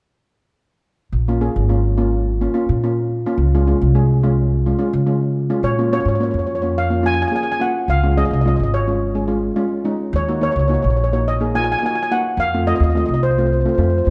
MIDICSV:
0, 0, Header, 1, 4, 480
1, 0, Start_track
1, 0, Key_signature, -5, "minor"
1, 0, Tempo, 562324
1, 966, Time_signature, 4, 2, 24, 8
1, 12037, End_track
2, 0, Start_track
2, 0, Title_t, "Steel pan"
2, 0, Program_c, 0, 114
2, 4814, Note_on_c, 0, 73, 79
2, 5036, Note_off_c, 0, 73, 0
2, 5062, Note_on_c, 0, 73, 84
2, 5113, Note_off_c, 0, 73, 0
2, 5123, Note_on_c, 0, 73, 52
2, 5182, Note_off_c, 0, 73, 0
2, 5193, Note_on_c, 0, 73, 57
2, 5241, Note_off_c, 0, 73, 0
2, 5251, Note_on_c, 0, 73, 50
2, 5310, Note_off_c, 0, 73, 0
2, 5320, Note_on_c, 0, 73, 52
2, 5376, Note_off_c, 0, 73, 0
2, 5386, Note_on_c, 0, 73, 45
2, 5444, Note_off_c, 0, 73, 0
2, 5454, Note_on_c, 0, 73, 47
2, 5509, Note_off_c, 0, 73, 0
2, 5519, Note_on_c, 0, 73, 49
2, 5576, Note_off_c, 0, 73, 0
2, 5591, Note_on_c, 0, 73, 56
2, 5640, Note_off_c, 0, 73, 0
2, 5650, Note_on_c, 0, 73, 53
2, 5707, Note_off_c, 0, 73, 0
2, 5787, Note_on_c, 0, 77, 80
2, 5891, Note_off_c, 0, 77, 0
2, 6026, Note_on_c, 0, 80, 94
2, 6086, Note_off_c, 0, 80, 0
2, 6097, Note_on_c, 0, 80, 69
2, 6153, Note_off_c, 0, 80, 0
2, 6164, Note_on_c, 0, 80, 74
2, 6203, Note_off_c, 0, 80, 0
2, 6214, Note_on_c, 0, 80, 67
2, 6270, Note_off_c, 0, 80, 0
2, 6280, Note_on_c, 0, 80, 73
2, 6333, Note_off_c, 0, 80, 0
2, 6344, Note_on_c, 0, 80, 68
2, 6407, Note_off_c, 0, 80, 0
2, 6417, Note_on_c, 0, 80, 74
2, 6471, Note_off_c, 0, 80, 0
2, 6500, Note_on_c, 0, 78, 77
2, 6741, Note_off_c, 0, 78, 0
2, 6741, Note_on_c, 0, 77, 85
2, 6846, Note_off_c, 0, 77, 0
2, 6978, Note_on_c, 0, 75, 84
2, 7034, Note_off_c, 0, 75, 0
2, 7044, Note_on_c, 0, 75, 60
2, 7103, Note_off_c, 0, 75, 0
2, 7114, Note_on_c, 0, 75, 60
2, 7165, Note_off_c, 0, 75, 0
2, 7180, Note_on_c, 0, 75, 60
2, 7225, Note_off_c, 0, 75, 0
2, 7235, Note_on_c, 0, 75, 66
2, 7295, Note_off_c, 0, 75, 0
2, 7309, Note_on_c, 0, 75, 54
2, 7360, Note_off_c, 0, 75, 0
2, 7370, Note_on_c, 0, 75, 64
2, 7421, Note_off_c, 0, 75, 0
2, 7460, Note_on_c, 0, 73, 77
2, 8379, Note_off_c, 0, 73, 0
2, 8671, Note_on_c, 0, 73, 83
2, 8892, Note_off_c, 0, 73, 0
2, 8902, Note_on_c, 0, 73, 81
2, 8965, Note_off_c, 0, 73, 0
2, 8975, Note_on_c, 0, 73, 60
2, 9032, Note_off_c, 0, 73, 0
2, 9043, Note_on_c, 0, 73, 57
2, 9094, Note_off_c, 0, 73, 0
2, 9115, Note_on_c, 0, 73, 53
2, 9158, Note_off_c, 0, 73, 0
2, 9168, Note_on_c, 0, 73, 55
2, 9227, Note_off_c, 0, 73, 0
2, 9239, Note_on_c, 0, 73, 50
2, 9293, Note_off_c, 0, 73, 0
2, 9305, Note_on_c, 0, 73, 51
2, 9350, Note_off_c, 0, 73, 0
2, 9360, Note_on_c, 0, 73, 49
2, 9411, Note_off_c, 0, 73, 0
2, 9421, Note_on_c, 0, 73, 60
2, 9482, Note_off_c, 0, 73, 0
2, 9503, Note_on_c, 0, 73, 59
2, 9551, Note_off_c, 0, 73, 0
2, 9628, Note_on_c, 0, 75, 78
2, 9841, Note_off_c, 0, 75, 0
2, 9862, Note_on_c, 0, 80, 90
2, 9924, Note_off_c, 0, 80, 0
2, 9939, Note_on_c, 0, 80, 71
2, 9993, Note_off_c, 0, 80, 0
2, 10003, Note_on_c, 0, 80, 78
2, 10051, Note_off_c, 0, 80, 0
2, 10062, Note_on_c, 0, 80, 65
2, 10112, Note_off_c, 0, 80, 0
2, 10123, Note_on_c, 0, 80, 76
2, 10183, Note_off_c, 0, 80, 0
2, 10204, Note_on_c, 0, 80, 67
2, 10255, Note_off_c, 0, 80, 0
2, 10266, Note_on_c, 0, 80, 71
2, 10313, Note_off_c, 0, 80, 0
2, 10343, Note_on_c, 0, 78, 77
2, 10558, Note_off_c, 0, 78, 0
2, 10583, Note_on_c, 0, 77, 96
2, 10817, Note_on_c, 0, 75, 87
2, 10821, Note_off_c, 0, 77, 0
2, 10879, Note_off_c, 0, 75, 0
2, 10889, Note_on_c, 0, 75, 65
2, 10946, Note_off_c, 0, 75, 0
2, 10956, Note_on_c, 0, 75, 64
2, 11001, Note_off_c, 0, 75, 0
2, 11011, Note_on_c, 0, 75, 56
2, 11063, Note_off_c, 0, 75, 0
2, 11073, Note_on_c, 0, 75, 63
2, 11133, Note_off_c, 0, 75, 0
2, 11144, Note_on_c, 0, 75, 58
2, 11204, Note_off_c, 0, 75, 0
2, 11216, Note_on_c, 0, 75, 66
2, 11267, Note_off_c, 0, 75, 0
2, 11293, Note_on_c, 0, 72, 72
2, 11353, Note_off_c, 0, 72, 0
2, 11362, Note_on_c, 0, 72, 48
2, 11418, Note_off_c, 0, 72, 0
2, 11428, Note_on_c, 0, 72, 46
2, 11480, Note_off_c, 0, 72, 0
2, 11491, Note_on_c, 0, 72, 43
2, 11538, Note_off_c, 0, 72, 0
2, 11548, Note_on_c, 0, 72, 46
2, 11603, Note_off_c, 0, 72, 0
2, 11613, Note_on_c, 0, 72, 41
2, 11672, Note_off_c, 0, 72, 0
2, 11683, Note_on_c, 0, 72, 43
2, 11725, Note_off_c, 0, 72, 0
2, 11735, Note_on_c, 0, 72, 42
2, 11795, Note_off_c, 0, 72, 0
2, 11805, Note_on_c, 0, 72, 45
2, 11853, Note_off_c, 0, 72, 0
2, 11863, Note_on_c, 0, 72, 42
2, 11924, Note_off_c, 0, 72, 0
2, 11933, Note_on_c, 0, 72, 47
2, 11982, Note_off_c, 0, 72, 0
2, 11992, Note_on_c, 0, 72, 44
2, 12037, Note_off_c, 0, 72, 0
2, 12037, End_track
3, 0, Start_track
3, 0, Title_t, "Steel pan"
3, 0, Program_c, 1, 114
3, 1094, Note_on_c, 1, 58, 68
3, 1097, Note_on_c, 1, 61, 57
3, 1099, Note_on_c, 1, 65, 77
3, 1162, Note_off_c, 1, 58, 0
3, 1163, Note_off_c, 1, 61, 0
3, 1164, Note_off_c, 1, 65, 0
3, 1205, Note_on_c, 1, 58, 70
3, 1205, Note_on_c, 1, 61, 64
3, 1206, Note_on_c, 1, 68, 78
3, 1356, Note_off_c, 1, 58, 0
3, 1357, Note_off_c, 1, 61, 0
3, 1357, Note_off_c, 1, 68, 0
3, 1443, Note_on_c, 1, 61, 62
3, 1445, Note_on_c, 1, 58, 65
3, 1447, Note_on_c, 1, 65, 68
3, 1596, Note_off_c, 1, 61, 0
3, 1597, Note_off_c, 1, 58, 0
3, 1597, Note_off_c, 1, 65, 0
3, 1686, Note_on_c, 1, 58, 72
3, 1686, Note_on_c, 1, 61, 68
3, 1689, Note_on_c, 1, 65, 77
3, 1904, Note_off_c, 1, 61, 0
3, 1905, Note_off_c, 1, 58, 0
3, 1906, Note_off_c, 1, 65, 0
3, 2059, Note_on_c, 1, 58, 61
3, 2060, Note_on_c, 1, 65, 70
3, 2061, Note_on_c, 1, 61, 61
3, 2125, Note_off_c, 1, 58, 0
3, 2125, Note_off_c, 1, 65, 0
3, 2126, Note_off_c, 1, 61, 0
3, 2169, Note_on_c, 1, 65, 79
3, 2172, Note_on_c, 1, 58, 70
3, 2172, Note_on_c, 1, 61, 65
3, 2319, Note_off_c, 1, 65, 0
3, 2321, Note_off_c, 1, 58, 0
3, 2321, Note_off_c, 1, 61, 0
3, 2419, Note_on_c, 1, 61, 61
3, 2422, Note_on_c, 1, 58, 66
3, 2422, Note_on_c, 1, 65, 74
3, 2632, Note_off_c, 1, 61, 0
3, 2633, Note_off_c, 1, 58, 0
3, 2633, Note_off_c, 1, 65, 0
3, 2785, Note_on_c, 1, 58, 67
3, 2785, Note_on_c, 1, 61, 67
3, 2787, Note_on_c, 1, 65, 82
3, 2893, Note_off_c, 1, 58, 0
3, 2893, Note_off_c, 1, 61, 0
3, 2894, Note_off_c, 1, 65, 0
3, 3027, Note_on_c, 1, 61, 69
3, 3028, Note_on_c, 1, 56, 73
3, 3029, Note_on_c, 1, 65, 86
3, 3089, Note_off_c, 1, 61, 0
3, 3090, Note_off_c, 1, 56, 0
3, 3090, Note_off_c, 1, 65, 0
3, 3135, Note_on_c, 1, 56, 66
3, 3135, Note_on_c, 1, 61, 67
3, 3136, Note_on_c, 1, 65, 77
3, 3283, Note_off_c, 1, 56, 0
3, 3283, Note_off_c, 1, 61, 0
3, 3283, Note_off_c, 1, 65, 0
3, 3371, Note_on_c, 1, 68, 74
3, 3373, Note_on_c, 1, 56, 73
3, 3373, Note_on_c, 1, 61, 58
3, 3521, Note_off_c, 1, 68, 0
3, 3522, Note_off_c, 1, 56, 0
3, 3522, Note_off_c, 1, 61, 0
3, 3614, Note_on_c, 1, 65, 81
3, 3615, Note_on_c, 1, 61, 70
3, 3616, Note_on_c, 1, 56, 69
3, 3830, Note_off_c, 1, 61, 0
3, 3830, Note_off_c, 1, 65, 0
3, 3831, Note_off_c, 1, 56, 0
3, 3981, Note_on_c, 1, 56, 68
3, 3981, Note_on_c, 1, 65, 72
3, 3984, Note_on_c, 1, 61, 56
3, 4046, Note_off_c, 1, 65, 0
3, 4047, Note_off_c, 1, 56, 0
3, 4048, Note_off_c, 1, 61, 0
3, 4085, Note_on_c, 1, 61, 63
3, 4086, Note_on_c, 1, 65, 77
3, 4090, Note_on_c, 1, 56, 72
3, 4238, Note_off_c, 1, 61, 0
3, 4238, Note_off_c, 1, 65, 0
3, 4240, Note_off_c, 1, 56, 0
3, 4324, Note_on_c, 1, 65, 69
3, 4325, Note_on_c, 1, 56, 63
3, 4325, Note_on_c, 1, 61, 62
3, 4545, Note_off_c, 1, 56, 0
3, 4545, Note_off_c, 1, 61, 0
3, 4545, Note_off_c, 1, 65, 0
3, 4694, Note_on_c, 1, 56, 72
3, 4694, Note_on_c, 1, 61, 64
3, 4695, Note_on_c, 1, 65, 81
3, 4808, Note_off_c, 1, 56, 0
3, 4808, Note_off_c, 1, 61, 0
3, 4809, Note_off_c, 1, 65, 0
3, 4940, Note_on_c, 1, 65, 75
3, 4941, Note_on_c, 1, 58, 66
3, 4941, Note_on_c, 1, 61, 59
3, 5006, Note_off_c, 1, 65, 0
3, 5007, Note_off_c, 1, 58, 0
3, 5007, Note_off_c, 1, 61, 0
3, 5055, Note_on_c, 1, 58, 63
3, 5057, Note_on_c, 1, 61, 59
3, 5059, Note_on_c, 1, 65, 74
3, 5203, Note_off_c, 1, 58, 0
3, 5204, Note_off_c, 1, 61, 0
3, 5205, Note_off_c, 1, 65, 0
3, 5293, Note_on_c, 1, 61, 57
3, 5296, Note_on_c, 1, 58, 67
3, 5297, Note_on_c, 1, 65, 71
3, 5509, Note_off_c, 1, 61, 0
3, 5511, Note_off_c, 1, 58, 0
3, 5511, Note_off_c, 1, 65, 0
3, 5652, Note_on_c, 1, 58, 54
3, 5655, Note_on_c, 1, 61, 52
3, 5660, Note_on_c, 1, 65, 62
3, 5793, Note_off_c, 1, 58, 0
3, 5794, Note_off_c, 1, 61, 0
3, 5796, Note_off_c, 1, 65, 0
3, 5888, Note_on_c, 1, 58, 63
3, 5889, Note_on_c, 1, 61, 57
3, 5893, Note_on_c, 1, 65, 61
3, 5960, Note_off_c, 1, 58, 0
3, 5961, Note_off_c, 1, 61, 0
3, 5962, Note_off_c, 1, 65, 0
3, 5999, Note_on_c, 1, 61, 64
3, 6002, Note_on_c, 1, 65, 71
3, 6004, Note_on_c, 1, 58, 61
3, 6155, Note_off_c, 1, 61, 0
3, 6156, Note_off_c, 1, 65, 0
3, 6157, Note_off_c, 1, 58, 0
3, 6245, Note_on_c, 1, 58, 64
3, 6245, Note_on_c, 1, 61, 54
3, 6246, Note_on_c, 1, 68, 66
3, 6397, Note_off_c, 1, 58, 0
3, 6397, Note_off_c, 1, 61, 0
3, 6398, Note_off_c, 1, 68, 0
3, 6483, Note_on_c, 1, 65, 66
3, 6485, Note_on_c, 1, 61, 53
3, 6487, Note_on_c, 1, 58, 60
3, 6704, Note_off_c, 1, 65, 0
3, 6705, Note_off_c, 1, 61, 0
3, 6706, Note_off_c, 1, 58, 0
3, 6857, Note_on_c, 1, 61, 64
3, 6858, Note_on_c, 1, 56, 67
3, 6858, Note_on_c, 1, 65, 73
3, 6924, Note_off_c, 1, 61, 0
3, 6925, Note_off_c, 1, 56, 0
3, 6925, Note_off_c, 1, 65, 0
3, 6977, Note_on_c, 1, 56, 66
3, 6977, Note_on_c, 1, 61, 60
3, 6978, Note_on_c, 1, 68, 73
3, 7123, Note_off_c, 1, 56, 0
3, 7123, Note_off_c, 1, 61, 0
3, 7124, Note_off_c, 1, 68, 0
3, 7215, Note_on_c, 1, 56, 66
3, 7218, Note_on_c, 1, 65, 73
3, 7219, Note_on_c, 1, 61, 54
3, 7430, Note_off_c, 1, 56, 0
3, 7431, Note_off_c, 1, 61, 0
3, 7431, Note_off_c, 1, 65, 0
3, 7577, Note_on_c, 1, 56, 55
3, 7577, Note_on_c, 1, 61, 54
3, 7577, Note_on_c, 1, 65, 65
3, 7714, Note_off_c, 1, 56, 0
3, 7714, Note_off_c, 1, 61, 0
3, 7714, Note_off_c, 1, 65, 0
3, 7810, Note_on_c, 1, 61, 56
3, 7811, Note_on_c, 1, 68, 66
3, 7813, Note_on_c, 1, 56, 57
3, 7881, Note_off_c, 1, 61, 0
3, 7881, Note_off_c, 1, 68, 0
3, 7882, Note_off_c, 1, 56, 0
3, 7918, Note_on_c, 1, 56, 68
3, 7918, Note_on_c, 1, 61, 61
3, 7920, Note_on_c, 1, 65, 72
3, 8073, Note_off_c, 1, 56, 0
3, 8074, Note_off_c, 1, 61, 0
3, 8074, Note_off_c, 1, 65, 0
3, 8161, Note_on_c, 1, 65, 79
3, 8162, Note_on_c, 1, 56, 80
3, 8162, Note_on_c, 1, 61, 67
3, 8315, Note_off_c, 1, 56, 0
3, 8315, Note_off_c, 1, 61, 0
3, 8315, Note_off_c, 1, 65, 0
3, 8404, Note_on_c, 1, 56, 70
3, 8409, Note_on_c, 1, 63, 83
3, 8410, Note_on_c, 1, 61, 64
3, 8623, Note_off_c, 1, 56, 0
3, 8626, Note_off_c, 1, 61, 0
3, 8626, Note_off_c, 1, 63, 0
3, 8779, Note_on_c, 1, 58, 66
3, 8780, Note_on_c, 1, 63, 62
3, 8781, Note_on_c, 1, 66, 77
3, 8844, Note_off_c, 1, 58, 0
3, 8845, Note_off_c, 1, 63, 0
3, 8845, Note_off_c, 1, 66, 0
3, 8888, Note_on_c, 1, 66, 72
3, 8889, Note_on_c, 1, 58, 71
3, 8890, Note_on_c, 1, 63, 60
3, 9038, Note_off_c, 1, 58, 0
3, 9038, Note_off_c, 1, 66, 0
3, 9039, Note_off_c, 1, 63, 0
3, 9128, Note_on_c, 1, 63, 63
3, 9129, Note_on_c, 1, 58, 61
3, 9131, Note_on_c, 1, 66, 71
3, 9345, Note_off_c, 1, 58, 0
3, 9345, Note_off_c, 1, 63, 0
3, 9346, Note_off_c, 1, 66, 0
3, 9499, Note_on_c, 1, 58, 60
3, 9499, Note_on_c, 1, 63, 56
3, 9503, Note_on_c, 1, 66, 64
3, 9634, Note_off_c, 1, 58, 0
3, 9634, Note_off_c, 1, 63, 0
3, 9636, Note_off_c, 1, 66, 0
3, 9734, Note_on_c, 1, 63, 62
3, 9736, Note_on_c, 1, 58, 65
3, 9739, Note_on_c, 1, 68, 71
3, 9801, Note_off_c, 1, 63, 0
3, 9802, Note_off_c, 1, 58, 0
3, 9804, Note_off_c, 1, 68, 0
3, 9857, Note_on_c, 1, 58, 69
3, 9858, Note_on_c, 1, 63, 60
3, 9860, Note_on_c, 1, 65, 75
3, 10002, Note_off_c, 1, 58, 0
3, 10002, Note_off_c, 1, 63, 0
3, 10003, Note_off_c, 1, 65, 0
3, 10095, Note_on_c, 1, 58, 64
3, 10096, Note_on_c, 1, 63, 60
3, 10100, Note_on_c, 1, 66, 69
3, 10241, Note_off_c, 1, 58, 0
3, 10241, Note_off_c, 1, 63, 0
3, 10243, Note_off_c, 1, 66, 0
3, 10338, Note_on_c, 1, 66, 72
3, 10340, Note_on_c, 1, 58, 65
3, 10341, Note_on_c, 1, 63, 59
3, 10549, Note_off_c, 1, 66, 0
3, 10550, Note_off_c, 1, 58, 0
3, 10551, Note_off_c, 1, 63, 0
3, 10705, Note_on_c, 1, 57, 64
3, 10706, Note_on_c, 1, 60, 59
3, 10708, Note_on_c, 1, 65, 72
3, 10766, Note_off_c, 1, 57, 0
3, 10767, Note_off_c, 1, 60, 0
3, 10767, Note_off_c, 1, 65, 0
3, 10813, Note_on_c, 1, 60, 59
3, 10814, Note_on_c, 1, 65, 78
3, 10816, Note_on_c, 1, 57, 62
3, 10959, Note_off_c, 1, 60, 0
3, 10960, Note_off_c, 1, 57, 0
3, 10960, Note_off_c, 1, 65, 0
3, 11054, Note_on_c, 1, 57, 60
3, 11056, Note_on_c, 1, 65, 65
3, 11057, Note_on_c, 1, 60, 56
3, 11267, Note_off_c, 1, 57, 0
3, 11268, Note_off_c, 1, 60, 0
3, 11268, Note_off_c, 1, 65, 0
3, 11422, Note_on_c, 1, 57, 55
3, 11423, Note_on_c, 1, 60, 50
3, 11424, Note_on_c, 1, 65, 66
3, 11554, Note_off_c, 1, 57, 0
3, 11555, Note_off_c, 1, 60, 0
3, 11556, Note_off_c, 1, 65, 0
3, 11655, Note_on_c, 1, 57, 62
3, 11656, Note_on_c, 1, 60, 54
3, 11657, Note_on_c, 1, 65, 62
3, 11720, Note_off_c, 1, 57, 0
3, 11721, Note_off_c, 1, 60, 0
3, 11722, Note_off_c, 1, 65, 0
3, 11767, Note_on_c, 1, 57, 69
3, 11769, Note_on_c, 1, 60, 58
3, 11769, Note_on_c, 1, 65, 74
3, 11915, Note_off_c, 1, 57, 0
3, 11916, Note_off_c, 1, 65, 0
3, 11917, Note_off_c, 1, 60, 0
3, 12007, Note_on_c, 1, 57, 59
3, 12009, Note_on_c, 1, 65, 59
3, 12010, Note_on_c, 1, 60, 54
3, 12037, Note_off_c, 1, 57, 0
3, 12037, Note_off_c, 1, 60, 0
3, 12037, Note_off_c, 1, 65, 0
3, 12037, End_track
4, 0, Start_track
4, 0, Title_t, "Upright bass"
4, 0, Program_c, 2, 32
4, 960, Note_on_c, 2, 34, 70
4, 1255, Note_off_c, 2, 34, 0
4, 1331, Note_on_c, 2, 32, 74
4, 2095, Note_off_c, 2, 32, 0
4, 2297, Note_on_c, 2, 46, 76
4, 2767, Note_off_c, 2, 46, 0
4, 2882, Note_on_c, 2, 37, 75
4, 3177, Note_off_c, 2, 37, 0
4, 3256, Note_on_c, 2, 36, 80
4, 4019, Note_off_c, 2, 36, 0
4, 4211, Note_on_c, 2, 49, 80
4, 4684, Note_off_c, 2, 49, 0
4, 4806, Note_on_c, 2, 46, 73
4, 5099, Note_off_c, 2, 46, 0
4, 5167, Note_on_c, 2, 44, 72
4, 5361, Note_off_c, 2, 44, 0
4, 5410, Note_on_c, 2, 41, 69
4, 6174, Note_off_c, 2, 41, 0
4, 6727, Note_on_c, 2, 37, 75
4, 7019, Note_off_c, 2, 37, 0
4, 7090, Note_on_c, 2, 36, 70
4, 7283, Note_off_c, 2, 36, 0
4, 7337, Note_on_c, 2, 32, 71
4, 8097, Note_off_c, 2, 32, 0
4, 8645, Note_on_c, 2, 39, 81
4, 8938, Note_off_c, 2, 39, 0
4, 9012, Note_on_c, 2, 37, 77
4, 9203, Note_off_c, 2, 37, 0
4, 9253, Note_on_c, 2, 34, 76
4, 10014, Note_off_c, 2, 34, 0
4, 10560, Note_on_c, 2, 41, 78
4, 10853, Note_off_c, 2, 41, 0
4, 10926, Note_on_c, 2, 39, 75
4, 11119, Note_off_c, 2, 39, 0
4, 11170, Note_on_c, 2, 36, 68
4, 11640, Note_off_c, 2, 36, 0
4, 11761, Note_on_c, 2, 41, 67
4, 11978, Note_off_c, 2, 41, 0
4, 12005, Note_on_c, 2, 39, 71
4, 12037, Note_off_c, 2, 39, 0
4, 12037, End_track
0, 0, End_of_file